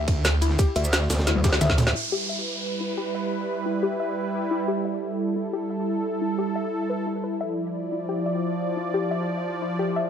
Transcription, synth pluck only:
0, 0, Header, 1, 2, 480
1, 0, Start_track
1, 0, Tempo, 340909
1, 829, Time_signature, 4, 2, 24, 8
1, 14217, End_track
2, 0, Start_track
2, 0, Title_t, "Synth pluck"
2, 0, Program_c, 0, 84
2, 589, Note_on_c, 0, 64, 78
2, 739, Note_off_c, 0, 64, 0
2, 828, Note_on_c, 0, 67, 101
2, 979, Note_off_c, 0, 67, 0
2, 1068, Note_on_c, 0, 76, 79
2, 1158, Note_off_c, 0, 76, 0
2, 1789, Note_on_c, 0, 64, 85
2, 1939, Note_off_c, 0, 64, 0
2, 2028, Note_on_c, 0, 67, 107
2, 2179, Note_off_c, 0, 67, 0
2, 2268, Note_on_c, 0, 76, 82
2, 2359, Note_off_c, 0, 76, 0
2, 2748, Note_on_c, 0, 64, 80
2, 2899, Note_off_c, 0, 64, 0
2, 2988, Note_on_c, 0, 67, 102
2, 3139, Note_off_c, 0, 67, 0
2, 3229, Note_on_c, 0, 76, 78
2, 3319, Note_off_c, 0, 76, 0
2, 3949, Note_on_c, 0, 64, 76
2, 4099, Note_off_c, 0, 64, 0
2, 4189, Note_on_c, 0, 67, 103
2, 4339, Note_off_c, 0, 67, 0
2, 4429, Note_on_c, 0, 76, 73
2, 4519, Note_off_c, 0, 76, 0
2, 5150, Note_on_c, 0, 64, 75
2, 5300, Note_off_c, 0, 64, 0
2, 5390, Note_on_c, 0, 67, 97
2, 5539, Note_off_c, 0, 67, 0
2, 5630, Note_on_c, 0, 76, 81
2, 5720, Note_off_c, 0, 76, 0
2, 6350, Note_on_c, 0, 64, 76
2, 6499, Note_off_c, 0, 64, 0
2, 6590, Note_on_c, 0, 67, 99
2, 6740, Note_off_c, 0, 67, 0
2, 6830, Note_on_c, 0, 76, 74
2, 6919, Note_off_c, 0, 76, 0
2, 7550, Note_on_c, 0, 64, 79
2, 7700, Note_off_c, 0, 64, 0
2, 7790, Note_on_c, 0, 67, 97
2, 7940, Note_off_c, 0, 67, 0
2, 8030, Note_on_c, 0, 76, 79
2, 8120, Note_off_c, 0, 76, 0
2, 8750, Note_on_c, 0, 64, 77
2, 8899, Note_off_c, 0, 64, 0
2, 8991, Note_on_c, 0, 67, 101
2, 9140, Note_off_c, 0, 67, 0
2, 9229, Note_on_c, 0, 76, 72
2, 9319, Note_off_c, 0, 76, 0
2, 9710, Note_on_c, 0, 71, 75
2, 9800, Note_off_c, 0, 71, 0
2, 9949, Note_on_c, 0, 64, 80
2, 10099, Note_off_c, 0, 64, 0
2, 10189, Note_on_c, 0, 71, 77
2, 10339, Note_off_c, 0, 71, 0
2, 10429, Note_on_c, 0, 76, 78
2, 10519, Note_off_c, 0, 76, 0
2, 11149, Note_on_c, 0, 64, 76
2, 11299, Note_off_c, 0, 64, 0
2, 11389, Note_on_c, 0, 67, 98
2, 11539, Note_off_c, 0, 67, 0
2, 11629, Note_on_c, 0, 76, 78
2, 11719, Note_off_c, 0, 76, 0
2, 12349, Note_on_c, 0, 64, 81
2, 12499, Note_off_c, 0, 64, 0
2, 12589, Note_on_c, 0, 67, 101
2, 12739, Note_off_c, 0, 67, 0
2, 12828, Note_on_c, 0, 76, 78
2, 12919, Note_off_c, 0, 76, 0
2, 13548, Note_on_c, 0, 64, 73
2, 13698, Note_off_c, 0, 64, 0
2, 13788, Note_on_c, 0, 67, 101
2, 13938, Note_off_c, 0, 67, 0
2, 14028, Note_on_c, 0, 76, 77
2, 14119, Note_off_c, 0, 76, 0
2, 14217, End_track
0, 0, End_of_file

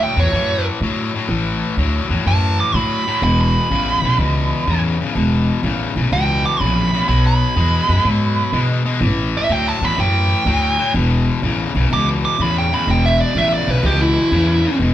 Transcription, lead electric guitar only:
0, 0, Header, 1, 2, 480
1, 0, Start_track
1, 0, Tempo, 481928
1, 1291, Time_signature, 4, 2, 24, 8
1, 14879, End_track
2, 0, Start_track
2, 0, Title_t, "Lead electric guitar"
2, 0, Program_c, 0, 29
2, 35, Note_on_c, 0, 79, 82
2, 178, Note_off_c, 0, 79, 0
2, 198, Note_on_c, 0, 73, 95
2, 650, Note_off_c, 0, 73, 0
2, 2266, Note_on_c, 0, 81, 102
2, 2569, Note_off_c, 0, 81, 0
2, 2592, Note_on_c, 0, 86, 85
2, 2745, Note_off_c, 0, 86, 0
2, 2745, Note_on_c, 0, 83, 90
2, 3204, Note_off_c, 0, 83, 0
2, 3226, Note_on_c, 0, 83, 89
2, 3374, Note_off_c, 0, 83, 0
2, 3396, Note_on_c, 0, 83, 91
2, 4784, Note_off_c, 0, 83, 0
2, 6106, Note_on_c, 0, 79, 98
2, 6409, Note_off_c, 0, 79, 0
2, 6429, Note_on_c, 0, 86, 83
2, 6577, Note_off_c, 0, 86, 0
2, 6577, Note_on_c, 0, 83, 89
2, 7040, Note_off_c, 0, 83, 0
2, 7053, Note_on_c, 0, 83, 91
2, 7208, Note_off_c, 0, 83, 0
2, 7240, Note_on_c, 0, 83, 96
2, 8626, Note_off_c, 0, 83, 0
2, 9336, Note_on_c, 0, 76, 89
2, 9480, Note_off_c, 0, 76, 0
2, 9480, Note_on_c, 0, 79, 94
2, 9642, Note_off_c, 0, 79, 0
2, 9642, Note_on_c, 0, 81, 86
2, 9805, Note_off_c, 0, 81, 0
2, 9805, Note_on_c, 0, 83, 81
2, 9944, Note_off_c, 0, 83, 0
2, 9961, Note_on_c, 0, 79, 91
2, 10878, Note_off_c, 0, 79, 0
2, 11886, Note_on_c, 0, 86, 104
2, 12025, Note_off_c, 0, 86, 0
2, 12200, Note_on_c, 0, 86, 84
2, 12367, Note_off_c, 0, 86, 0
2, 12367, Note_on_c, 0, 83, 87
2, 12505, Note_off_c, 0, 83, 0
2, 12533, Note_on_c, 0, 79, 86
2, 12668, Note_off_c, 0, 79, 0
2, 12689, Note_on_c, 0, 83, 93
2, 12826, Note_off_c, 0, 83, 0
2, 12855, Note_on_c, 0, 79, 96
2, 12990, Note_off_c, 0, 79, 0
2, 13003, Note_on_c, 0, 76, 91
2, 13153, Note_off_c, 0, 76, 0
2, 13153, Note_on_c, 0, 74, 85
2, 13326, Note_off_c, 0, 74, 0
2, 13326, Note_on_c, 0, 76, 97
2, 13465, Note_off_c, 0, 76, 0
2, 13482, Note_on_c, 0, 74, 91
2, 13653, Note_off_c, 0, 74, 0
2, 13653, Note_on_c, 0, 71, 93
2, 13788, Note_off_c, 0, 71, 0
2, 13806, Note_on_c, 0, 67, 92
2, 13958, Note_off_c, 0, 67, 0
2, 13958, Note_on_c, 0, 64, 91
2, 14721, Note_off_c, 0, 64, 0
2, 14879, End_track
0, 0, End_of_file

